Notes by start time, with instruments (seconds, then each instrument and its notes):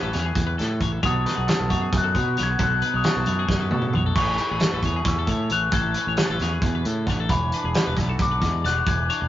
Already playing: clean electric guitar A2 C#4 B4, glockenspiel G#6
0.03 fingered electric bass A1, clean electric guitar A4
0.13 fingered electric bass E2, clean electric guitar G#4 C#5, snare, closed hi-hat
0.25 clean electric guitar G#4
0.35 fingered electric bass E2, kick, closed hi-hat
0.47 clean electric guitar B4
0.58 fingered electric bass A2, clean electric guitar A4, snare, closed hi-hat
0.80 fingered electric bass A1, clean electric guitar A2 C#5, kick, closed hi-hat
0.92 clean electric guitar A4
1.03 fingered electric bass B1, clean electric guitar B2 B3 D#4 F#4 A4 C#5, glockenspiel D#6, kick, closed hi-hat
1.25 clean electric guitar D#4 B4, snare, closed hi-hat
1.37 fingered electric bass B1, clean electric guitar G#4
1.47 clean electric guitar A4, snare, closed hi-hat
1.59 fingered electric bass B1, clean electric guitar A4
1.70 fingered electric bass F#2, clean electric guitar F#4 C#5, kick, closed hi-hat
1.82 clean electric guitar G#4
1.93 fingered electric bass F#2, clean electric guitar D#4, kick, closed hi-hat
1.98 glockenspiel F#6
2.04 clean electric guitar A4
2.15 fingered electric bass B2, clean electric guitar B3 C#5, kick, closed hi-hat
2.37 fingered electric bass B1, clean electric guitar F#4 C#5, snare, closed hi-hat
2.43 glockenspiel G#6
2.50 clean electric guitar B4
2.59 fingered electric bass B1, clean electric guitar B2 A4, kick, closed hi-hat
2.63 glockenspiel F#6
2.82 clean electric guitar B4, closed hi-hat
2.86 clean electric guitar D#4
2.94 fingered electric bass B1, clean electric guitar C#5, glockenspiel D#6
3.04 clean electric guitar A4, snare, closed hi-hat
3.09 glockenspiel C#6
3.16 fingered electric bass B1, clean electric guitar A4
3.26 fingered electric bass F#2, clean electric guitar E4 C#5, closed hi-hat
3.39 clean electric guitar F#4 G#4
3.48 fingered electric bass F#2, clean electric guitar D#3, kick, snare
3.61 clean electric guitar B4
3.71 fingered electric bass B2, clean electric guitar A4, high tom
3.75 clean electric guitar C#3
3.82 mid tom
3.93 fingered electric bass B1, clean electric guitar B2 C#5, mid tom
4.06 clean electric guitar A4
4.15 fingered electric bass A1, clean electric guitar A2 A3 C#4 C#5, glockenspiel C#6, kick, closed hi-hat, crash
4.20 clean electric guitar G#4 B4
4.38 clean electric guitar C#4 B4, closed hi-hat
4.51 fingered electric bass A1, clean electric guitar G#4
4.60 clean electric guitar A4, snare, closed hi-hat
4.72 fingered electric bass A1, clean electric guitar A4 B4
4.83 fingered electric bass E2, clean electric guitar G#4 C#5, kick, closed hi-hat
4.96 clean electric guitar G#4
5.05 fingered electric bass E2, clean electric guitar C#4, glockenspiel E6, kick, snare, closed hi-hat
5.19 clean electric guitar A4
5.27 fingered electric bass A2, clean electric guitar A3 C#5, kick, closed hi-hat
5.50 fingered electric bass A1, clean electric guitar C#5, glockenspiel F#6, closed hi-hat
5.55 clean electric guitar G#4
5.63 clean electric guitar B4
5.72 fingered electric bass A1, clean electric guitar A2 A4, glockenspiel G#6, kick, closed hi-hat
5.94 clean electric guitar B4, closed hi-hat
5.98 clean electric guitar C#4
6.07 fingered electric bass A1, clean electric guitar C#5
6.17 clean electric guitar A4, snare, closed hi-hat
6.30 fingered electric bass A1, clean electric guitar A4 B4
6.39 fingered electric bass E2, clean electric guitar G#4 C#5, snare, closed hi-hat
6.53 clean electric guitar G#4
6.62 fingered electric bass E2, clean electric guitar B2, kick, closed hi-hat
6.75 clean electric guitar B4
6.85 fingered electric bass A2, clean electric guitar C#3 A4, closed hi-hat
7.06 fingered electric bass A1, clean electric guitar D3 C#5, kick, snare, closed hi-hat
7.20 clean electric guitar A4
7.29 fingered electric bass E1, clean electric guitar E3 C#5, glockenspiel B5, kick, closed hi-hat
7.52 clean electric guitar D4 B4, closed hi-hat
7.64 fingered electric bass E1, clean electric guitar G#4
7.74 clean electric guitar B4, snare, closed hi-hat
7.86 fingered electric bass E1, clean electric guitar B4
7.96 fingered electric bass B1, clean electric guitar E4 D5, kick, snare, closed hi-hat
8.08 clean electric guitar F#4 A4
8.19 fingered electric bass B1, clean electric guitar D4, glockenspiel D6, kick, closed hi-hat
8.31 clean electric guitar B4
8.41 fingered electric bass E2, clean electric guitar G#3 D5, kick, snare, closed hi-hat
8.64 fingered electric bass E1, clean electric guitar F#4 D5, glockenspiel F#6, snare, closed hi-hat
8.76 clean electric guitar C#5
8.86 fingered electric bass E1, clean electric guitar E3 B4, glockenspiel G#6, kick, closed hi-hat
9.10 clean electric guitar D4 C#5, closed hi-hat
9.21 fingered electric bass E1, clean electric guitar D5